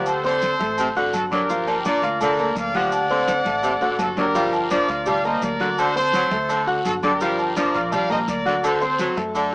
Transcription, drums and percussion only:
0.06 high conga soft
0.06 low agogo loud
0.06 long guiro medium
0.06 maracas medium
0.24 high conga soft
0.24 maracas soft
0.41 high conga loud
0.41 low agogo medium
0.41 short guiro medium
0.41 maracas medium
0.60 high conga loud
0.60 short guiro medium
0.60 maracas soft
0.78 high conga soft
0.78 low agogo loud
0.78 long guiro medium
0.78 maracas medium
0.96 high conga soft
0.96 maracas soft
1.14 high conga medium
1.14 low agogo loud
1.14 short guiro medium
1.14 maracas medium
1.32 high conga medium
1.32 low agogo medium
1.32 short guiro medium
1.32 maracas soft
1.49 high conga soft
1.49 low agogo medium
1.49 long guiro medium
1.49 maracas medium
1.67 high conga soft
1.67 low agogo loud
1.67 maracas soft
1.85 high conga medium
1.85 short guiro medium
1.85 maracas medium
2.02 high conga soft
2.02 low agogo medium
2.02 short guiro medium
2.02 maracas soft
2.20 high conga soft
2.20 low conga medium
2.20 low agogo loud
2.20 long guiro medium
2.20 maracas medium
2.39 high conga soft
2.39 low agogo medium
2.39 maracas soft
2.56 high conga medium
2.56 short guiro medium
2.56 maracas medium
2.74 high conga medium
2.74 low agogo medium
2.74 short guiro medium
2.74 maracas soft
2.92 high conga soft
2.92 low agogo loud
2.92 long guiro medium
2.92 maracas medium
3.10 high conga soft
3.10 maracas soft
3.28 high conga medium
3.28 high timbale loud
3.28 low agogo medium
3.28 short guiro medium
3.28 maracas medium
3.45 high conga medium
3.45 short guiro medium
3.45 maracas soft
3.63 high conga soft
3.63 low timbale medium
3.63 low agogo loud
3.63 long guiro medium
3.63 maracas medium
3.81 high conga soft
3.81 low timbale medium
3.81 maracas soft
3.99 high conga medium
3.99 low timbale loud
3.99 low agogo loud
3.99 short guiro medium
3.99 maracas medium
4.17 high conga medium
4.17 low timbale medium
4.17 low agogo medium
4.17 short guiro medium
4.17 maracas soft
4.35 high conga soft
4.35 low agogo medium
4.35 long guiro medium
4.35 maracas medium
4.53 high conga soft
4.53 low agogo loud
4.53 maracas soft
4.70 high conga medium
4.70 short guiro medium
4.70 maracas medium
4.88 high conga soft
4.88 low agogo medium
4.88 short guiro medium
4.88 maracas soft
5.06 high conga soft
5.06 low conga medium
5.06 low agogo loud
5.06 long guiro medium
5.06 maracas medium
5.24 high conga soft
5.24 low agogo medium
5.24 maracas soft
5.42 high conga medium
5.42 low timbale medium
5.42 short guiro medium
5.42 maracas medium
5.60 high conga medium
5.60 low agogo medium
5.60 short guiro medium
5.60 maracas soft
5.78 low agogo loud
5.78 long guiro medium
5.78 maracas medium
5.96 high conga soft
5.96 maracas soft
6.13 high conga loud
6.13 low agogo medium
6.13 short guiro medium
6.13 maracas medium
6.31 high conga loud
6.31 short guiro medium
6.31 maracas soft
6.49 high conga soft
6.49 low agogo loud
6.49 long guiro medium
6.49 maracas medium
6.67 high conga soft
6.67 maracas soft
6.85 high conga medium
6.85 low agogo loud
6.85 short guiro medium
6.85 maracas medium
7.03 high conga medium
7.03 low agogo medium
7.03 short guiro medium
7.03 maracas soft
7.21 high conga soft
7.21 low agogo medium
7.21 long guiro medium
7.21 maracas medium
7.39 high conga soft
7.39 low agogo loud
7.39 maracas soft
7.56 high conga loud
7.56 short guiro medium
7.56 maracas medium
7.74 high conga soft
7.74 low agogo medium
7.74 short guiro medium
7.74 maracas soft
7.92 high conga soft
7.92 low conga medium
7.92 low agogo loud
7.92 long guiro medium
7.92 maracas medium
8.10 high conga soft
8.10 low conga medium
8.10 low agogo medium
8.10 maracas soft
8.28 high conga medium
8.28 short guiro medium
8.28 maracas medium
8.46 high conga medium
8.46 low agogo medium
8.46 short guiro medium
8.46 maracas soft
8.64 high conga soft
8.64 low agogo loud
8.64 long guiro medium
8.64 maracas medium
8.81 high conga soft
8.81 maracas soft
8.99 high conga medium
8.99 low agogo medium
8.99 short guiro medium
8.99 maracas medium
9.17 high conga medium
9.17 short guiro medium
9.17 maracas soft
9.35 high conga soft
9.35 low agogo loud
9.35 long guiro medium
9.35 maracas medium

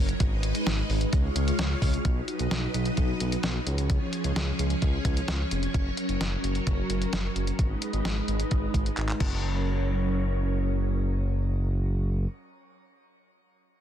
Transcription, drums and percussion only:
0.09 closed hi-hat medium
0.20 kick loud
0.20 closed hi-hat medium
0.43 closed hi-hat medium
0.55 closed hi-hat medium
0.67 snare loud
0.67 closed hi-hat medium
0.90 open hi-hat soft
1.01 closed hi-hat medium
1.13 kick medium
1.13 closed hi-hat medium
1.36 closed hi-hat medium
1.48 closed hi-hat medium
1.59 snare loud
1.59 closed hi-hat medium
1.82 kick loud
1.82 open hi-hat medium
1.94 closed hi-hat medium
2.05 kick loud
2.05 closed hi-hat medium
2.28 closed hi-hat medium
2.39 closed hi-hat soft
2.51 snare loud
2.51 closed hi-hat medium
2.74 closed hi-hat medium
2.86 closed hi-hat medium
2.97 kick medium
2.97 closed hi-hat medium
3.20 closed hi-hat medium
3.32 closed hi-hat medium
3.43 snare loud
3.43 closed hi-hat medium
3.67 closed hi-hat medium
3.78 closed hi-hat soft
3.90 kick loud
3.90 closed hi-hat medium
4.13 closed hi-hat medium
4.24 closed hi-hat soft
4.36 snare loud
4.36 closed hi-hat medium
4.59 closed hi-hat medium
4.70 closed hi-hat medium
4.82 kick medium
4.82 closed hi-hat medium
5.05 kick medium
5.05 closed hi-hat medium
5.17 closed hi-hat medium
5.28 snare loud
5.28 closed hi-hat medium
5.51 closed hi-hat medium
5.63 closed hi-hat soft
5.74 kick loud
5.74 closed hi-hat medium
5.97 closed hi-hat medium
6.09 closed hi-hat soft
6.21 snare loud
6.21 closed hi-hat medium
6.44 closed hi-hat medium
6.55 closed hi-hat medium
6.67 kick medium
6.67 closed hi-hat medium
6.90 closed hi-hat medium
7.02 closed hi-hat medium
7.13 snare loud
7.13 closed hi-hat medium
7.36 closed hi-hat medium
7.47 closed hi-hat soft
7.59 kick loud
7.59 closed hi-hat medium
7.82 closed hi-hat medium
7.93 closed hi-hat soft
8.05 snare loud
8.05 closed hi-hat medium
8.28 closed hi-hat medium
8.40 closed hi-hat medium
8.51 kick medium
8.51 closed hi-hat medium
8.74 kick medium
8.74 closed hi-hat medium
8.86 closed hi-hat medium
8.97 clap medium
8.97 closed hi-hat medium
9.09 clap medium
9.20 kick loud
9.20 crash medium

